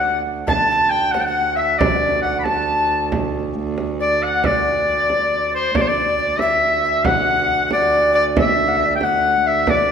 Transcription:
Already playing: viola da gamba D2, recorder F#5, shawm F#5
0.26 frame drum
0.47 viola da gamba D2, recorder A5, shawm A5, frame drum
0.71 recorder A5
0.90 shawm G5, recorder G5, frame drum
1.11 shawm F#5, recorder F#5, frame drum
1.21 shawm G5
1.25 shawm F#5, recorder F#5
1.55 shawm E5, recorder E5
1.78 shawm D5, recorder D5, frame drum
2.22 shawm F#5, recorder F#5, frame drum
2.39 shawm B5
2.44 shawm A5, frame drum
2.48 recorder A5
3.12 frame drum
3.56 frame drum
3.78 frame drum
4.00 recorder D5, shawm D5
4.22 shawm F#5, recorder F#5
4.43 recorder D5, shawm D5, frame drum
4.67 frame drum
4.89 frame drum
5.10 frame drum
5.32 frame drum
5.53 recorder C5, shawm C5
5.74 viola da gamba D2, recorder D5, shawm D5, frame drum
5.81 shawm C5
5.88 shawm D5, recorder D5
5.96 frame drum
6.18 recorder D5, frame drum
6.39 shawm E5, recorder E5, frame drum
6.85 recorder E5
7.05 shawm F#5, recorder F#5, frame drum
7.27 frame drum
7.50 frame drum
7.71 recorder D5, shawm D5, frame drum
8.14 recorder D5, shawm D5
8.37 recorder E5, shawm E5, frame drum
8.59 frame drum
8.68 recorder F#5
8.77 recorder E5, frame drum
8.86 recorder D5
8.96 recorder E5, shawm G5
9.01 recorder F#5, shawm F#5, frame drum
9.46 recorder E5, shawm E5
9.67 recorder D5, shawm D5, frame drum

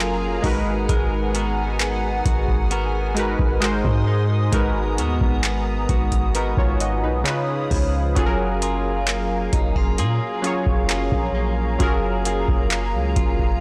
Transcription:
Already playing: 808-style bass F#1, synth keys F#3 C#4 F4 G#4 A4 A#4, clean electric guitar F#3 A#3, analog synth pad G#4 F5 G#5 A#5
0.00 clean electric guitar F4 G#4
0.42 808-style bass G#1, synth keys G#3 D#4 F#4 A#4, clean electric guitar G#3, analog synth pad F#5, kick, open hi-hat
0.47 synth keys B4
0.89 808-style bass G#1, clean electric guitar G#3 A#4, kick, closed hi-hat
1.34 clean electric guitar B3 F#4 A#4, closed hi-hat
1.80 clean electric guitar B3, clap, closed hi-hat
2.25 808-style bass G#1, clean electric guitar F#4, kick, closed hi-hat
2.48 kick
2.71 clean electric guitar B3 F#4 A#4, closed hi-hat
3.15 synth keys G#3 D#4 F#4 A#4, closed hi-hat
3.19 synth keys B4
3.39 808-style bass G#1, kick
3.60 synth keys G#3 D#4 F#4 A#4, clean electric guitar G#3, analog synth pad C6 D#6, clap, closed hi-hat
3.65 synth keys C5
3.85 808-style bass G#2, kick
4.07 clean electric guitar D#4
4.51 808-style bass G#1, synth keys G#2 G#3 D#4 F#4 A#4, clean electric guitar G#3 A#4, analog synth pad B3 A#5, kick, closed hi-hat
4.56 synth keys B4
4.98 808-style bass D#2, clean electric guitar B3 F#4 A#4, closed hi-hat
5.21 808-style bass G#1, kick
5.44 clean electric guitar B3, clap, closed hi-hat
5.89 808-style bass G#1, clean electric guitar F#4, kick, closed hi-hat
6.12 kick, closed hi-hat
6.35 clean electric guitar B3 F#4 A#4, synth keys D#4 B4, closed hi-hat
6.57 808-style bass G#1, synth keys F4 C#5, kick
6.80 synth keys F#4 D#5, closed hi-hat
7.03 808-style bass B1, synth keys D#4 B4
7.24 synth keys C#3 C#4 D#4 F4, clean electric guitar C#3, analog synth pad C#5 F5 B5 D#6, clap, closed hi-hat
7.29 synth keys B4
7.71 808-style bass C#2, clean electric guitar F3, kick, open hi-hat
8.15 808-style bass F#1, synth keys F#3 C#4 F4 G#4, clean electric guitar F#3 G#4, analog synth pad G#4 G#5 A#5, kick, closed hi-hat
8.20 synth keys A4
8.26 synth keys A#4
8.62 clean electric guitar A#3 F4 G#4, closed hi-hat
9.08 clean electric guitar A#3, clap, closed hi-hat
9.53 808-style bass F#1, clean electric guitar D#4, kick, closed hi-hat
9.76 clean electric guitar F4, kick
9.98 808-style bass A#2, clean electric guitar A#3 F4 G#4, closed hi-hat
10.42 synth keys F#3 C#4 F4 G#4, closed hi-hat
10.47 synth keys C#5
10.66 808-style bass F#1, kick
10.89 clean electric guitar A#3 F4 G#4, clap, closed hi-hat
11.12 808-style bass A#1, kick
11.35 clean electric guitar A#3
11.78 808-style bass F#1, synth keys F#3 C#4 F4 G#4, clean electric guitar F#3 G#4, kick, closed hi-hat
11.83 synth keys A#4
12.25 clean electric guitar A#3 F4 G#4, closed hi-hat
12.48 808-style bass F#1, kick
12.71 clean electric guitar A#3, clap, closed hi-hat
12.94 808-style bass C#2
13.16 808-style bass F#1, clean electric guitar F4, kick, closed hi-hat
13.39 kick

